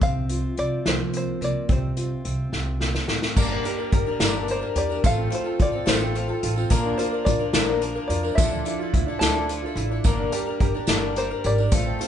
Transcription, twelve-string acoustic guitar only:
3.36 3.64 G2 medium
3.36 3.64 D3 medium
3.36 3.63 G3 medium
3.36 3.64 A#3 loud
3.36 3.64 D4 medium
3.36 3.65 A#4 medium
3.64 3.78 G3 medium
3.64 3.78 A#3 medium
3.64 3.78 D4 medium
3.64 3.77 A#4 medium
3.78 4.07 G3 soft
3.78 4.07 A#3 soft
3.78 4.06 D4 soft
3.78 4.05 A#4 medium
4.06 4.20 G3 soft
4.06 4.20 A#3 soft
4.06 4.20 D4 medium
4.06 4.20 A#4 soft
4.20 4.48 G2 medium
4.20 4.48 D3 medium
4.20 4.46 G3 medium
4.20 4.47 A#3 medium
4.20 4.48 D4 medium
4.20 4.48 A#4 medium
4.47 4.62 G3 soft
4.47 4.61 A#3 medium
4.47 4.61 D4 medium
4.47 4.60 A#4 medium
4.61 4.90 G3 soft
4.61 4.89 A#3 medium
4.61 4.89 D4 soft
4.61 4.88 A#4 medium
4.89 5.03 G3 soft
4.89 5.04 A#3 soft
4.89 5.04 D4 soft
4.89 5.03 A#4 medium
5.04 5.29 A3 medium
5.04 5.29 C4 medium
5.04 5.30 F4 medium
5.04 5.31 A4 medium
5.30 5.45 A3 medium
5.30 5.45 C4 medium
5.30 5.44 F4 medium
5.30 5.43 A4 medium
5.44 5.72 C4 soft
5.44 5.72 F4 soft
5.44 5.71 A4 medium
5.72 5.85 C4 soft
5.72 5.85 F4 soft
5.72 5.86 A4 medium
5.86 6.14 A3 medium
5.86 6.15 C4 medium
5.86 6.15 F4 medium
5.86 6.15 A4 medium
6.15 6.29 A3 medium
6.15 6.29 C4 medium
6.15 6.28 F4 medium
6.15 6.27 A4 medium
6.28 6.57 C4 soft
6.28 6.56 F4 medium
6.28 6.55 A4 soft
6.56 6.71 C4 soft
6.56 6.71 F4 medium
6.56 6.71 A4 medium
6.70 6.99 A#2 medium
6.70 6.99 D3 medium
6.70 6.96 F3 medium
6.70 6.97 A#3 medium
6.70 6.98 D4 medium
6.70 6.98 A#4 medium
6.98 7.12 F3 medium
6.98 7.13 A#3 medium
6.98 7.12 D4 medium
6.98 7.11 A#4 medium
7.12 7.40 F3 soft
7.12 7.40 A#3 soft
7.12 7.39 D4 medium
7.12 7.38 A#4 soft
7.39 7.53 F3 soft
7.39 7.54 A#3 soft
7.39 7.53 D4 medium
7.39 7.54 A#4 soft
7.53 7.82 A#2 medium
7.53 7.82 D3 medium
7.53 7.80 F3 medium
7.53 7.80 A#3 medium
7.53 7.81 D4 medium
7.53 7.82 A#4 medium
7.81 7.96 F3 medium
7.81 7.96 A#3 medium
7.81 7.95 D4 medium
7.81 7.94 A#4 medium
7.95 8.24 F3 soft
7.95 8.23 A#3 medium
7.95 8.23 D4 medium
7.95 8.22 A#4 soft
8.23 8.37 F3 soft
8.23 8.38 A#3 soft
8.23 8.38 D4 medium
8.23 8.38 A#4 medium
8.38 8.66 D3 medium
8.38 8.64 F3 medium
8.38 8.65 D4 medium
8.38 8.66 E4 medium
8.38 8.66 A4 medium
8.65 8.80 F3 soft
8.65 8.80 D4 medium
8.65 8.80 E4 medium
8.65 8.79 A4 medium
8.81 9.09 D4 soft
8.81 9.08 E4 soft
8.81 9.07 A4 soft
9.08 9.22 D4 soft
9.08 9.23 E4 soft
9.08 9.22 A4 medium
9.22 9.50 D3 medium
9.22 9.48 F3 medium
9.22 9.50 D4 medium
9.22 9.50 E4 medium
9.22 9.51 A4 medium
9.50 9.64 F3 medium
9.50 9.64 D4 soft
9.50 9.64 E4 medium
9.50 9.65 A4 medium
9.66 9.92 D4 soft
9.66 9.91 E4 soft
9.66 9.90 A4 medium
9.91 10.06 D4 soft
9.91 10.06 E4 soft
9.91 10.05 A4 medium
10.06 10.33 G2 medium
10.06 10.33 D3 medium
10.06 10.31 G3 medium
10.06 10.32 A#3 medium
10.06 10.32 D4 medium
10.06 10.33 A#4 medium
10.32 10.47 G3 medium
10.32 10.47 A#3 medium
10.32 10.47 D4 medium
10.32 10.46 A#4 medium
10.47 10.76 G3 soft
10.47 10.75 A#3 soft
10.47 10.74 D4 soft
10.47 10.73 A#4 medium
10.74 10.88 G3 soft
10.74 10.87 A#3 soft
10.74 10.88 D4 soft
10.74 10.88 A#4 medium
10.88 11.16 G2 medium
10.88 11.17 D3 medium
10.88 11.15 G3 medium
10.88 11.15 A#3 medium
10.88 11.15 D4 medium
10.88 11.16 A#4 medium
11.16 11.30 G3 medium
11.16 11.30 A#3 medium
11.16 11.30 D4 medium
11.16 11.29 A#4 medium
11.31 11.59 G3 soft
11.31 11.59 A#3 soft
11.31 11.58 D4 medium
11.31 11.57 A#4 soft
11.59 11.72 G3 soft
11.59 11.73 A#3 soft
11.59 11.73 D4 soft
11.59 11.73 A#4 medium
11.73 11.98 A3 medium
11.73 12.00 C4 medium
11.73 12.00 F4 medium
11.73 12.00 A4 medium
11.99 12.08 A3 medium
11.99 12.08 C4 medium
11.99 12.08 F4 medium
11.99 12.08 A4 medium

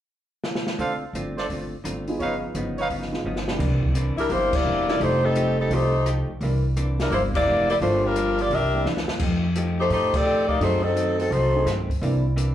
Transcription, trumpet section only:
0.78 0.94 D4 medium
0.78 0.94 A4 medium
0.78 0.94 C5 medium
0.78 0.95 F5 medium
1.38 1.46 D4 medium
1.38 1.46 A4 medium
1.38 1.46 C5 medium
1.38 1.46 D5 medium
2.20 2.36 D#4 medium
2.20 2.35 B4 medium
2.20 2.36 C#5 medium
2.20 2.35 F5 medium
2.78 2.87 D#4 medium
2.78 2.86 B4 medium
2.78 2.86 C#5 medium
2.78 2.86 F5 medium

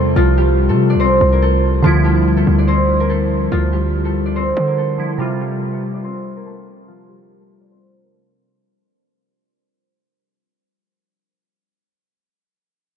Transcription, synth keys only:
0.00 1.79 C3 medium
0.00 1.80 G3 medium
0.00 1.81 F4 medium
1.82 4.94 D3 medium
1.82 4.95 F3 medium
1.82 4.96 E4 medium
4.98 5.19 D3 soft
4.98 5.20 F3 soft
4.98 5.20 E4 medium
5.18 8.51 C3 medium
5.18 8.51 G3 medium
5.18 8.52 F4 medium

